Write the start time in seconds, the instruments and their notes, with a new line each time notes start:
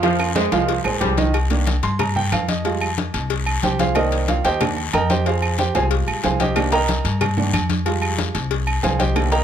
Already playing: upright bass F2
0.02 trombone section F3, upright piano F3 F4 F5, cowbell, high conga, high timbale, low agogo, long guiro
0.19 high conga, high timbale, low agogo, claves
0.35 trombone section G#3, upright piano G#3 G#4 C5, cowbell, high conga, high timbale, short guiro
0.52 upright bass C2, upright piano F3 F4 F5, cowbell, high conga, low timbale, low agogo, short guiro
0.69 cowbell, high conga, low timbale, long guiro
0.84 upright bass A#1, upright piano G#3 G#4 C5, high conga, low timbale, low agogo, claves
1.01 upright bass C2, trombone section G3, upright piano G#3 G#4 C5, cowbell, high conga, low timbale, low agogo, short guiro
1.17 upright piano D#3 D#4 D#5, cowbell, high conga, low timbale, short guiro
1.34 cowbell, low agogo, long guiro, claves
1.50 upright piano D#3 A#3 D4, cowbell, high conga
1.67 cowbell, high conga, low agogo, short guiro
1.83 upright bass G2, upright piano C6, cowbell, high conga, low agogo, short guiro
1.99 upright piano A#5, cowbell, high conga, low conga, low agogo, long guiro, claves
2.16 upright piano G5, high conga, low conga, low agogo
2.32 upright bass F2, upright piano F5, cowbell, high conga, low timbale, low agogo, short guiro, claves
2.48 upright piano D#5, cowbell, high conga, short guiro
2.65 upright piano G3 G#3 F4, cowbell, high conga, low agogo, long guiro
2.81 high conga, low agogo, claves
2.97 cowbell, high conga, short guiro
3.14 upright bass C2, cowbell, high conga, low agogo, short guiro
3.30 cowbell, high conga, long guiro
3.46 high conga, low agogo, claves
3.63 upright bass C2, upright piano G4 C5 G5, cowbell, high conga, low agogo, short guiro
3.79 upright piano F4 G#4 C5 F5, cowbell, high conga, short guiro
3.95 upright piano D#3 A#3 D#4 A#4 C5 D5 D#5, cowbell, low agogo, long guiro, claves
4.12 cowbell, high conga
4.28 upright piano F4 F5, cowbell, high conga, low agogo, short guiro
4.44 upright bass D#2, upright piano G4 C5 D#5 G5, cowbell, high conga, low agogo, short guiro
4.61 upright piano D#3 A#3 D4, cowbell, high conga, low conga, low agogo, long guiro, claves
4.77 high conga, low agogo
4.93 upright bass F2, upright piano A#4 D#5 G5 A#5, cowbell, high conga, low agogo, short guiro, claves
5.10 upright piano G4 C5 D#5 G5, cowbell, high conga, short guiro
5.26 upright piano F4 G#4 C5 F5, cowbell, high conga, low agogo, long guiro
5.42 high conga, low agogo, claves
5.58 upright piano G4 C5 G5, cowbell, high conga, short guiro
5.74 upright bass C2, upright piano G3 G#3 F4 G#4 C5 F5 G#5, cowbell, high conga, low agogo, short guiro
5.91 cowbell, high conga, long guiro
6.08 upright bass A#1, high conga, low agogo, claves
6.24 upright bass C2, upright piano G#4 C5 F5 G#5, cowbell, high conga, low timbale, low agogo, short guiro
6.40 upright piano G4 C5 D#5 G5, cowbell, high conga, short guiro
6.56 upright piano D#3 A#3 D4, cowbell, low agogo, long guiro, claves
6.72 upright piano A#4 D#5 G5 A#5, cowbell, high conga
6.88 cowbell, high conga, low agogo, short guiro
7.05 upright bass G2, cowbell, high conga, low agogo, short guiro
7.21 cowbell, high conga, low conga, low agogo, long guiro, claves
7.37 upright piano D#3 A#3 D4, high conga, low conga, low agogo
7.53 upright bass F2, cowbell, high conga, low agogo, short guiro, claves
7.69 cowbell, high conga, short guiro
7.85 upright piano G3 G#3 F4, cowbell, high conga, low agogo, long guiro
8.02 high conga, low agogo, claves
8.18 cowbell, high conga, short guiro
8.35 upright bass C2, cowbell, high conga, low agogo, short guiro
8.51 cowbell, high conga, long guiro
8.67 high conga, low agogo, claves
8.83 upright bass C2, upright piano G#4 C5 F5 G#5, cowbell, high conga, low timbale, low agogo, short guiro
8.99 upright piano G4 C5 D#5 G5, cowbell, high conga, short guiro
9.15 upright piano D3 D#3 A#3, cowbell, low agogo, long guiro, claves
9.32 upright piano A#4 D#5 G5 A#5, cowbell, high conga